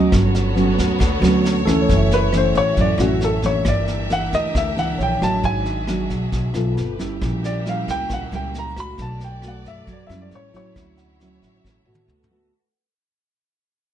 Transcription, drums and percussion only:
0.12 kick medium
0.12 cross-stick medium
0.12 snare soft
0.35 snare soft
0.57 snare soft
0.79 kick soft
0.79 snare soft
1.00 kick medium
1.00 cross-stick medium
1.00 snare soft
1.23 snare soft
1.45 snare soft
1.67 kick soft
1.67 cross-stick medium
1.67 snare soft
1.89 kick medium
1.89 snare soft
2.11 snare soft
2.33 cross-stick medium
2.33 snare soft
2.55 kick soft
2.55 snare soft
2.77 kick medium
2.77 snare soft
2.99 cross-stick medium
2.99 snare soft
3.21 snare soft
3.42 kick soft
3.42 snare soft
3.65 kick medium
3.65 cross-stick medium
3.65 snare soft
3.88 snare soft
4.10 snare soft
4.33 kick soft
4.33 snare soft
4.55 kick medium
4.55 cross-stick medium
4.55 snare soft
4.77 snare soft
5.00 snare soft
5.22 kick soft
5.22 cross-stick medium
5.22 snare soft
5.43 kick medium
5.43 snare soft
5.66 snare soft
5.87 cross-stick medium
5.87 snare soft
6.10 kick soft
6.10 snare soft
6.32 kick medium
6.32 snare soft
6.54 cross-stick soft
6.54 snare soft
6.77 snare soft
6.99 kick soft
6.99 snare soft
7.22 kick medium
7.22 cross-stick medium
7.22 snare soft
7.44 snare soft
7.66 snare soft
7.88 kick soft
7.88 snare soft
8.10 kick medium
8.10 cross-stick medium
8.10 snare soft
8.32 snare soft
8.54 snare soft
8.76 kick soft
8.76 cross-stick medium
8.76 snare soft
8.98 kick medium
8.98 snare soft
9.20 snare soft
9.42 cross-stick medium
9.42 snare soft
9.65 kick soft
9.65 snare soft
9.87 kick medium
9.87 snare soft
10.10 cross-stick medium
10.10 snare soft
10.31 snare soft
10.54 kick soft
10.54 snare soft
10.76 kick medium
10.76 cross-stick medium
10.76 snare soft
10.98 snare soft
11.20 snare soft
11.42 kick soft
11.42 snare soft
11.65 kick medium
11.65 snare soft
11.95 high tom soft
12.09 mid tom soft
12.24 mid tom medium

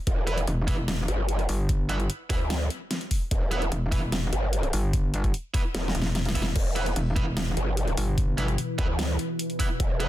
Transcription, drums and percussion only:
0.07 kick loud
0.07 closed hi-hat medium
0.27 closed hi-hat medium
0.38 closed hi-hat soft
0.47 closed hi-hat medium
0.68 kick loud
0.68 open hi-hat medium
0.88 snare loud
0.88 closed hi-hat medium
1.08 closed hi-hat medium
1.29 closed hi-hat medium
1.39 closed hi-hat soft
1.49 open hi-hat medium
1.69 kick loud
1.69 closed hi-hat medium
1.89 closed hi-hat medium
2.00 closed hi-hat soft
2.10 closed hi-hat medium
2.30 kick loud
2.30 open hi-hat medium
2.50 snare loud
2.50 closed hi-hat medium
2.70 closed hi-hat medium
2.91 snare medium
2.91 closed hi-hat medium
3.01 closed hi-hat soft
3.11 kick medium
3.11 open hi-hat medium
3.31 kick loud
3.31 closed hi-hat medium
3.52 closed hi-hat medium
3.62 closed hi-hat soft
3.72 closed hi-hat medium
3.92 kick loud
3.92 open hi-hat medium
4.12 snare loud
4.12 closed hi-hat medium
4.33 closed hi-hat medium
4.53 closed hi-hat medium
4.63 closed hi-hat soft
4.73 open hi-hat medium
4.93 kick loud
4.93 closed hi-hat medium
5.14 closed hi-hat medium
5.24 kick medium
5.24 closed hi-hat soft
5.34 closed hi-hat medium
5.54 kick loud
5.54 open hi-hat medium
5.75 snare medium
5.75 closed hi-hat medium
5.88 snare medium
5.95 closed hi-hat medium
6.02 snare medium
6.15 snare medium
6.15 closed hi-hat medium
6.25 snare loud
6.25 closed hi-hat soft
6.35 kick medium
6.35 open hi-hat medium
6.42 snare loud
6.56 kick loud
6.56 closed hi-hat medium
6.56 crash loud
6.76 closed hi-hat medium
6.86 closed hi-hat soft
6.96 closed hi-hat medium
7.16 kick loud
7.16 closed hi-hat medium
7.37 snare loud
7.37 closed hi-hat medium
7.57 closed hi-hat medium
7.77 closed hi-hat medium
7.88 closed hi-hat soft
7.97 open hi-hat medium
8.18 kick loud
8.18 closed hi-hat medium
8.38 closed hi-hat medium
8.48 closed hi-hat soft
8.58 closed hi-hat medium
8.79 kick loud
8.79 closed hi-hat medium
8.99 snare loud
8.99 closed hi-hat medium
9.19 closed hi-hat medium
9.39 closed hi-hat medium
9.50 closed hi-hat soft
9.60 kick medium
9.60 open hi-hat medium
9.80 kick loud
9.80 closed hi-hat medium
10.00 closed hi-hat medium

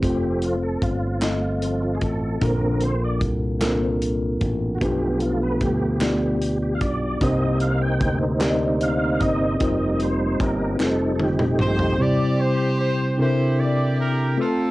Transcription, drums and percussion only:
0.03 kick medium
0.03 closed hi-hat medium
0.42 closed hi-hat soft
0.82 kick medium
0.82 closed hi-hat soft
1.22 snare medium
1.22 clap medium
1.22 closed hi-hat medium
1.62 closed hi-hat soft
2.01 kick medium
2.01 closed hi-hat soft
2.41 kick loud
2.41 closed hi-hat medium
2.81 closed hi-hat soft
3.21 kick medium
3.21 closed hi-hat soft
3.61 snare medium
3.61 clap medium
3.61 closed hi-hat medium
4.02 closed hi-hat soft
4.41 kick medium
4.41 closed hi-hat soft
4.81 kick medium
4.81 closed hi-hat medium
5.20 closed hi-hat soft
5.61 kick medium
5.61 closed hi-hat soft
6.01 snare loud
6.01 clap medium
6.01 closed hi-hat medium
6.42 closed hi-hat soft
6.81 kick medium
6.81 closed hi-hat soft
7.21 kick loud
7.21 closed hi-hat medium
7.60 closed hi-hat soft
8.01 kick medium
8.01 closed hi-hat soft
8.40 snare medium
8.40 clap medium
8.40 closed hi-hat medium
8.81 closed hi-hat soft
9.21 kick medium
9.21 closed hi-hat soft
9.60 kick medium
9.60 closed hi-hat medium
10.00 closed hi-hat soft
10.40 kick medium
10.40 closed hi-hat medium
10.80 snare medium
10.80 clap medium
11.20 high tom medium
11.39 mid tom medium
11.59 mid tom medium
11.79 floor tom medium

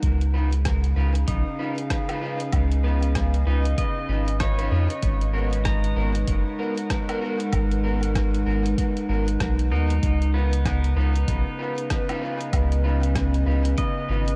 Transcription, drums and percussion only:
0.03 kick loud
0.03 closed hi-hat medium
0.21 closed hi-hat soft
0.52 closed hi-hat soft
0.65 kick loud
0.65 cross-stick medium
0.65 closed hi-hat soft
0.84 closed hi-hat soft
1.15 closed hi-hat soft
1.28 kick loud
1.28 closed hi-hat soft
1.78 closed hi-hat soft
1.90 kick loud
1.90 cross-stick medium
1.90 closed hi-hat soft
2.09 closed hi-hat soft
2.09 low woodblock medium
2.40 closed hi-hat soft
2.53 kick loud
2.53 closed hi-hat soft
2.53 low woodblock medium
2.72 closed hi-hat soft
3.03 closed hi-hat soft
3.15 kick loud
3.15 cross-stick medium
3.15 closed hi-hat soft
3.34 closed hi-hat soft
3.65 closed hi-hat soft
3.78 kick loud
3.78 closed hi-hat soft
4.28 closed hi-hat soft
4.40 kick loud
4.40 cross-stick medium
4.40 closed hi-hat soft
4.59 closed hi-hat soft
4.90 closed hi-hat soft
5.02 kick loud
5.02 closed hi-hat medium
5.21 closed hi-hat soft
5.53 closed hi-hat soft
5.65 kick loud
5.65 cross-stick medium
5.65 closed hi-hat medium
5.84 closed hi-hat soft
6.15 closed hi-hat soft
6.28 kick loud
6.28 closed hi-hat medium
6.78 closed hi-hat soft
6.90 kick loud
6.90 cross-stick medium
6.90 closed hi-hat medium
7.09 closed hi-hat soft
7.09 low woodblock medium
7.40 closed hi-hat soft
7.53 kick loud
7.53 closed hi-hat medium
7.53 low woodblock medium
7.71 closed hi-hat soft
8.03 closed hi-hat soft
8.15 kick loud
8.15 cross-stick medium
8.15 closed hi-hat medium
8.34 closed hi-hat soft
8.66 closed hi-hat soft
8.78 kick loud
8.78 closed hi-hat medium
8.97 closed hi-hat soft
9.28 closed hi-hat soft
9.40 kick loud
9.40 cross-stick medium
9.40 closed hi-hat medium
9.59 closed hi-hat soft
9.90 closed hi-hat soft
10.03 kick loud
10.03 closed hi-hat medium
10.22 closed hi-hat soft
10.53 closed hi-hat soft
10.65 kick loud
10.65 cross-stick medium
10.65 closed hi-hat medium
10.84 closed hi-hat soft
11.16 closed hi-hat soft
11.28 kick loud
11.28 closed hi-hat medium
11.78 closed hi-hat soft
11.90 kick loud
11.90 cross-stick medium
11.90 closed hi-hat medium
12.09 closed hi-hat soft
12.09 low woodblock medium
12.41 closed hi-hat soft
12.53 kick loud
12.53 closed hi-hat medium
12.53 low woodblock medium
12.72 closed hi-hat soft
13.03 closed hi-hat soft
13.15 kick loud
13.15 cross-stick medium
13.15 closed hi-hat medium
13.34 closed hi-hat soft
13.65 closed hi-hat soft
13.78 kick loud
13.78 closed hi-hat medium
14.28 closed hi-hat soft

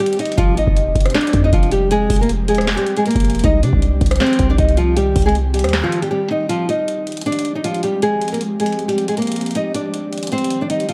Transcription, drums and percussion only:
0.06 closed hi-hat medium
0.13 closed hi-hat medium
0.19 closed hi-hat medium
0.25 closed hi-hat medium
0.32 closed hi-hat medium
0.38 kick loud
0.38 closed hi-hat medium
0.57 closed hi-hat medium
0.67 kick loud
0.77 closed hi-hat medium
0.95 kick loud
0.95 closed hi-hat medium
1.00 closed hi-hat medium
1.06 cross-stick loud
1.06 closed hi-hat medium
1.10 closed hi-hat medium
1.15 snare loud
1.15 clap loud
1.15 closed hi-hat soft
1.21 closed hi-hat medium
1.27 closed hi-hat medium
1.33 kick medium
1.33 closed hi-hat medium
1.53 kick loud
1.53 closed hi-hat medium
1.63 closed hi-hat soft
1.71 closed hi-hat medium
1.91 closed hi-hat medium
2.10 kick medium
2.10 closed hi-hat medium
2.10 open hi-hat medium
2.16 closed hi-hat medium
2.23 closed hi-hat medium
2.29 closed hi-hat medium
2.48 closed hi-hat medium
2.55 cross-stick loud
2.55 closed hi-hat medium
2.61 closed hi-hat medium
2.67 snare loud
2.67 clap loud
2.67 closed hi-hat soft
2.77 closed hi-hat medium
2.87 closed hi-hat medium
2.97 closed hi-hat medium
3.06 closed hi-hat medium
3.11 closed hi-hat medium
3.16 kick medium
3.16 closed hi-hat medium
3.20 closed hi-hat medium
3.25 closed hi-hat medium
3.30 closed hi-hat medium
3.35 closed hi-hat medium
3.39 closed hi-hat medium
3.44 kick loud
3.44 closed hi-hat medium
3.63 closed hi-hat medium
3.73 kick loud
3.82 closed hi-hat medium
4.01 kick loud
4.01 closed hi-hat medium
4.06 closed hi-hat medium
4.11 cross-stick loud
4.11 closed hi-hat medium
4.16 closed hi-hat medium
4.20 snare loud
4.20 clap loud
4.20 closed hi-hat soft
4.27 closed hi-hat medium
4.33 closed hi-hat medium
4.39 kick medium
4.39 closed hi-hat medium
4.58 kick loud
4.58 closed hi-hat medium
4.69 closed hi-hat soft
4.77 closed hi-hat medium
4.97 closed hi-hat medium
5.16 kick loud
5.16 closed hi-hat medium
5.16 open hi-hat medium
5.22 closed hi-hat medium
5.29 closed hi-hat medium
5.35 closed hi-hat medium
5.54 closed hi-hat medium
5.59 closed hi-hat medium
5.64 cross-stick loud
5.64 closed hi-hat medium
5.69 closed hi-hat medium
5.73 cross-stick medium
5.73 snare loud
5.73 clap medium
5.73 closed hi-hat medium
5.92 closed hi-hat medium
6.02 closed hi-hat medium
6.50 closed hi-hat medium
6.69 closed hi-hat medium
6.88 closed hi-hat medium
7.07 closed hi-hat medium
7.12 closed hi-hat medium
7.17 closed hi-hat medium
7.21 closed hi-hat medium
7.26 closed hi-hat soft
7.32 closed hi-hat medium
7.39 closed hi-hat medium
7.45 closed hi-hat medium
7.64 closed hi-hat medium
7.74 closed hi-hat soft
7.83 closed hi-hat medium
8.02 closed hi-hat medium
8.21 closed hi-hat medium
8.28 closed hi-hat medium
8.34 closed hi-hat medium
8.41 closed hi-hat medium
8.60 closed hi-hat medium
8.66 closed hi-hat medium
8.72 closed hi-hat soft
8.79 closed hi-hat soft
8.89 closed hi-hat medium
8.98 closed hi-hat medium
9.08 closed hi-hat medium
9.17 closed hi-hat medium
9.22 closed hi-hat medium
9.27 closed hi-hat medium
9.32 closed hi-hat medium
9.36 closed hi-hat medium
9.41 closed hi-hat medium
9.46 closed hi-hat medium
9.51 closed hi-hat medium
9.55 closed hi-hat medium
9.75 closed hi-hat medium
9.94 closed hi-hat medium
10.13 closed hi-hat soft
10.18 closed hi-hat medium
10.23 closed hi-hat medium
10.27 closed hi-hat medium
10.32 closed hi-hat soft
10.38 closed hi-hat medium
10.44 closed hi-hat medium
10.50 closed hi-hat medium
10.70 closed hi-hat medium
10.80 closed hi-hat soft
10.89 closed hi-hat medium

